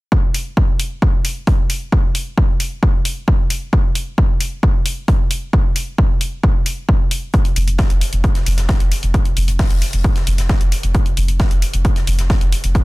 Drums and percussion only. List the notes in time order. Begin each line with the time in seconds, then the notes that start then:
0.12 kick
0.34 open hi-hat
0.57 kick
0.80 open hi-hat
1.02 kick
1.25 open hi-hat
1.47 kick, open hi-hat
1.70 open hi-hat
1.92 kick
2.15 open hi-hat
2.38 kick
2.60 open hi-hat
2.83 kick
3.05 open hi-hat
3.28 kick
3.50 open hi-hat
3.73 kick
3.95 open hi-hat
4.18 kick
4.41 open hi-hat
4.63 kick
4.86 open hi-hat
5.08 kick, open hi-hat
5.31 open hi-hat
5.53 kick
5.76 open hi-hat
5.98 kick
6.21 open hi-hat
6.43 kick
6.66 open hi-hat
6.89 kick
7.11 open hi-hat
7.33 kick, closed hi-hat, shaker
7.45 closed hi-hat
7.56 open hi-hat
7.68 closed hi-hat
7.78 kick, snare, closed hi-hat, shaker
7.90 closed hi-hat
8.01 open hi-hat
8.13 closed hi-hat
8.24 kick, closed hi-hat, shaker
8.35 snare, closed hi-hat
8.46 open hi-hat
8.57 snare, closed hi-hat
8.69 kick, snare, open hi-hat, shaker
8.80 closed hi-hat
8.92 open hi-hat
9.03 closed hi-hat
9.14 kick, closed hi-hat, shaker
9.25 closed hi-hat
9.37 open hi-hat
9.48 closed hi-hat
9.59 kick, snare, closed hi-hat, open hi-hat
9.71 closed hi-hat
9.82 open hi-hat
9.93 closed hi-hat
10.03 kick, closed hi-hat, shaker
10.16 snare, closed hi-hat
10.27 open hi-hat
10.38 snare, closed hi-hat
10.49 kick, snare, closed hi-hat, shaker
10.61 closed hi-hat
10.72 open hi-hat
10.83 closed hi-hat
10.94 kick, closed hi-hat, shaker
11.06 closed hi-hat
11.17 open hi-hat
11.28 closed hi-hat
11.40 kick, snare, closed hi-hat, shaker
11.51 closed hi-hat
11.62 open hi-hat
11.74 closed hi-hat
11.85 kick, closed hi-hat, shaker
11.96 snare, closed hi-hat
12.07 open hi-hat
12.19 snare, closed hi-hat
12.30 kick, snare, open hi-hat, shaker
12.41 closed hi-hat
12.52 open hi-hat
12.64 closed hi-hat
12.75 kick, closed hi-hat, shaker